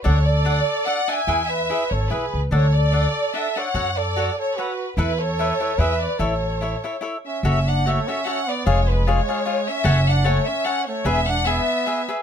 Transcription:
X:1
M:3/4
L:1/16
Q:"Swing" 1/4=147
K:A
V:1 name="Violin section"
c2 d6 f2 g2- | g2 e4 c2 B3 z | c2 d6 e2 f2- | f2 d4 c2 B3 z |
B2 c6 e2 d2 | c8 z2 e2 | [K:F#m] e2 f2 c2 e2 f2 d2 | c2 B2 c6 e2- |
e2 f2 c2 e2 f2 c2 | e2 f2 e6 z2 |]
V:2 name="Cavaquinho"
[DAdf]2 z2 [DAdf]2 z2 [DAdf]2 [DAdf]2 | [EGBe]2 z2 [EGBe]2 z2 [EGBe]2 z2 | [DAdf]2 z2 [DAdf]2 z2 [DAdf]2 [DAdf]2 | [FAcf]2 z2 [FAcf]2 z2 [FAcf]2 z2 |
[EABe]2 z2 [EABe]2 [EABe]2 [EGBe]2 z2 | [EAce]2 z2 [EAce]2 [EAce]2 [EAce]2 z2 | [K:F#m] [FAce]2 z2 [FAce]2 [FAce]2 [FAce]2 z2 | [^EGc^e]2 z2 [EGce]2 [EGce]2 [EGce]2 z2 |
[Acfg]2 z2 [Acfg]2 z2 [Acfg]2 z2 | [GBeg]2 z2 [GBeg]2 z2 [GBeg]2 [GBeg]2 |]
V:3 name="Trumpet"
A2 A6 d2 e2- | e2 B4 A2 G3 z | A2 A6 A2 c2- | c2 A4 A2 F3 z |
E2 A6 B2 B2 | A8 z2 C2 | [K:F#m] C2 D2 A,2 C2 C2 B,2 | G,2 G,2 G,6 C2- |
C2 D2 A,2 C2 C2 A,2 | B,2 D2 B,6 z2 |]
V:4 name="Upright bass" clef=bass
D,,8 z4 | E,,6 G,,,2 B,,,2 C,,2 | D,,8 z4 | F,,8 z4 |
E,,8 E,,4 | A,,,8 z4 | [K:F#m] F,,,8 z4 | ^E,,,8 z4 |
F,,,8 z4 | E,,,8 z4 |]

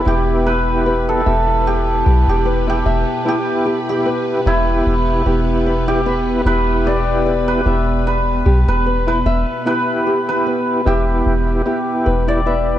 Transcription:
X:1
M:4/4
L:1/16
Q:"Swing 16ths" 1/4=75
K:Em
V:1 name="Hammered dulcimer"
G2 B3 A3 G3 G2 G3 | G3 G3 E4 z3 G3 | B2 d3 B3 B3 B2 B3 | B3 B3 G4 z3 d3 |]
V:2 name="Nylon-string guitar"
E z G z B2 e4 G z B E e2 | E z G z B2 e4 G z B E e2 | E z G z B2 e4 G z B E e2 | E z G z B2 e4 G z B E e2 |]
V:3 name="String machine"
[B,B]16- | [B,B]16- | [B,B]16- | [B,B]16 |]
V:4 name="Tonewheel organ"
[B,EG]6 [B,EG] z8 z | [B,EG]6 [B,EG]4 [B,EG]4 [B,EB]2 | [B,EG]6 [B,EG] z8 z | [B,EG]6 [B,EG]4 [B,EG]4 [B,EB]2 |]
V:5 name="808-style bass" clef=bass
E,,,6 E,,,4 B,,, E,,,3 E,,, z | z6 E,,,2 E,,,2 E,,,6 | E,,,6 E,,,4 B,,, E,,,3 E,,, z | z6 E,,,2 E,,,2 z2 E,,,4 |]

